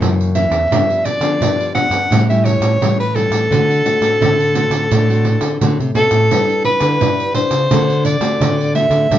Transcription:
Already playing: E3 A#3 C#4
0.00 F#2 C#3, pandeiro
0.21 pandeiro
0.35 E3 A#3 C#4 E5, pandeiro
0.50 E2, pandeiro
0.71 G2 F3 B3 D4, pandeiro
0.90 pandeiro
1.05 D5, pandeiro
1.20 D3 F3 B3 D4, pandeiro
1.41 G2 D3, pandeiro
1.60 pandeiro
1.75 F3 B3 D4 F#5, pandeiro
1.90 G2, pandeiro
2.11 A2 G3 C#4 E4, pandeiro
2.30 G3 C#4 E4 E5, pandeiro
2.45 C#5, pandeiro
2.60 A2, pandeiro
2.81 A2 E3 G3 C#4 E4, pandeiro
3.00 B4, pandeiro
3.15 G3 C#4 E4 A4, pandeiro
3.30 A2, pandeiro
3.51 D3 A3 C4 F#4, pandeiro
3.71 pandeiro
3.85 A3 C4 F#4, pandeiro
4.01 A2 A3 C4 F#4, pandeiro
4.21 A2 D3, pandeiro
4.40 pandeiro
4.54 A3 C4 F#4, pandeiro
4.71 D3, pandeiro
4.91 A2 D3, pandeiro
5.09 A3 C4 F#4, pandeiro
5.25 pandeiro
5.41 D3, pandeiro
5.61 A2 D3 A3 C4 F#4, pandeiro
5.80 C3, pandeiro
5.95 B2 A3 C4 F#4 A4, pandeiro
6.11 A2, pandeiro
6.31 G2 G3 D4 E4 B4, pandeiro
6.50 pandeiro
6.64 B4, pandeiro
6.80 D3 D4 E4 B4, pandeiro
7.01 G2 D3, pandeiro
7.20 pandeiro
7.34 D4 E4 B4 C5, pandeiro
7.50 C#3, pandeiro
7.71 D3 A3 C4 F#4, pandeiro
7.90 pandeiro
8.05 D5, pandeiro
8.20 D3 A3 C4 F#4, pandeiro
8.41 A2 D3, pandeiro
8.61 pandeiro
8.75 A3 C4 F#4 E5, pandeiro
8.90 D3, pandeiro
9.11 D3 G3 B3 F#4, pandeiro

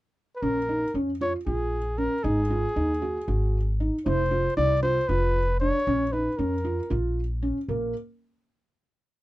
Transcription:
0.36 B4
0.42 A#1 C#4 A#4
0.69 D#4
0.94 F2 C#4
1.21 F4 C#5
1.46 A#1 F4 G#4
1.98 C#4 A#4
2.24 G#1 D#4 G#4
2.50 F4
2.76 D#2 D#4
3.02 F#4
3.28 G#1 F#4
3.80 D#4
4.05 F1 E4 C5
4.31 F4
4.57 C2 E4 D5
4.82 F4 C5
5.09 F1 F4 B4
5.60 D4 C#5
5.87 A#1 C#4
6.12 D#4 B4
6.37 F2 C#4 A#4
6.64 F4
6.90 A#1 F4
7.42 C#4
7.68 A#1 A#3

